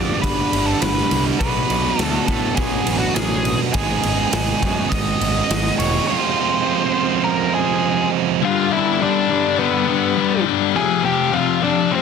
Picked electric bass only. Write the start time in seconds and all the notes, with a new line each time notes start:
Already playing: F2
0.23 G1
0.53 G1
0.82 G1
1.11 C2
1.40 B1
1.70 B1
1.99 D2
2.28 A2
2.57 B1
2.88 A1
3.16 A1
3.74 G#1
4.04 G#1
4.33 G#1
4.62 F#2
4.91 G#1
5.21 G#1
5.50 G#1
5.79 E1